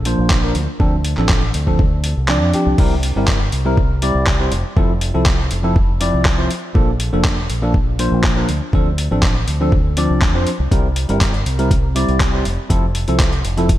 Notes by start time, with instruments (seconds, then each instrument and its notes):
Already playing: fingered electric bass A#1
0.05 tine electric piano F3 A#3 D4 C5, open hi-hat
0.18 fingered electric bass A#1
0.30 kick, clap
0.43 tine electric piano F3 A#3 D4 A#4
0.55 fingered electric bass D2, open hi-hat
0.80 fingered electric bass D2, tine electric piano F3 C4 D4 A4, kick
1.05 open hi-hat
1.17 fingered electric bass A1, tine electric piano F3 C4 D4 A4, clap
1.29 kick, clap
1.54 fingered electric bass D2, open hi-hat
1.67 tine electric piano F3 C4 D4 A4, kick
1.79 kick
2.04 open hi-hat
2.17 fingered electric bass C2
2.28 tine electric piano F3 C4 D4 D5, clap
2.42 fingered electric bass F2
2.53 tine electric piano F3 C4 D4 G4, muted fingered electric bass stroke, open hi-hat
2.66 fingered electric bass C2
2.78 fingered electric bass C2, tine electric piano G3 C4 E4 A#4, kick, crash
3.03 open hi-hat
3.16 fingered electric bass G1, tine electric piano G3 C4 E4 A#4
3.27 kick, clap
3.52 fingered electric bass C2, open hi-hat
3.65 tine electric piano G3 C4 E4 A#4
3.77 kick
4.02 tine electric piano G3 C4 E4 D5, open hi-hat
4.15 fingered electric bass C2
4.27 kick, clap
4.40 tine electric piano G3 C4 E4 C5
4.52 fingered electric bass F1, open hi-hat
4.76 fingered electric bass F1, tine electric piano F3 C4 E4 A4, kick
5.01 open hi-hat
5.14 fingered electric bass C2, tine electric piano F3 C4 E4 A4
5.26 kick, clap
5.51 fingered electric bass F1, open hi-hat
5.63 tine electric piano F3 C4 E4 A4
5.76 kick
6.00 tine electric piano F3 C4 E4 D5, open hi-hat
6.14 fingered electric bass C2
6.25 kick, clap
6.38 tine electric piano F3 C4 E4 C5
6.51 open hi-hat
6.75 fingered electric bass A#1, tine electric piano F3 A#3 D4 A4, kick
7.00 open hi-hat
7.13 fingered electric bass F1, tine electric piano F3 A#3 D4 A4
7.24 kick, clap
7.50 fingered electric bass A#1, open hi-hat
7.62 tine electric piano F3 A#3 D4 A4
7.74 kick
7.99 tine electric piano F3 A#3 D4 C5, open hi-hat
8.12 fingered electric bass A#1
8.24 kick, clap
8.37 tine electric piano F3 A#3 D4 A#4
8.49 fingered electric bass D2, open hi-hat
8.73 fingered electric bass D2, tine electric piano F3 C4 D4 A4, kick
8.98 open hi-hat
9.11 fingered electric bass A1, tine electric piano F3 C4 D4 A4
9.23 kick, clap
9.48 fingered electric bass D2, open hi-hat
9.61 tine electric piano F3 C4 D4 A4
9.72 kick
9.97 tine electric piano F3 C4 D4 D5, open hi-hat
10.10 fingered electric bass C2
10.22 kick, clap
10.34 fingered electric bass F2, tine electric piano F3 C4 D4 C5
10.47 muted fingered electric bass stroke, open hi-hat
10.60 fingered electric bass C2
10.71 fingered electric bass C2, tine electric piano G3 C4 E4 A#4, kick, closed hi-hat
10.96 open hi-hat
11.09 fingered electric bass G1, tine electric piano G3 C4 E4 A#4, closed hi-hat
11.21 kick, clap, closed hi-hat
11.34 closed hi-hat
11.46 fingered electric bass C2, open hi-hat
11.58 tine electric piano G3 C4 E4 A#4, closed hi-hat
11.71 kick, closed hi-hat
11.95 tine electric piano G3 C4 E4 D5, open hi-hat
12.09 fingered electric bass C2, closed hi-hat
12.20 kick, clap, closed hi-hat
12.33 tine electric piano G3 C4 E4 C5
12.45 fingered electric bass F1, open hi-hat
12.69 fingered electric bass F1, tine electric piano F3 C4 E4 A4, kick, closed hi-hat
12.95 open hi-hat
13.08 fingered electric bass C2, tine electric piano F3 C4 E4 A4, closed hi-hat
13.20 kick, clap, closed hi-hat
13.33 closed hi-hat
13.45 fingered electric bass F1, open hi-hat
13.57 tine electric piano F3 C4 E4 A4, closed hi-hat
13.69 kick, closed hi-hat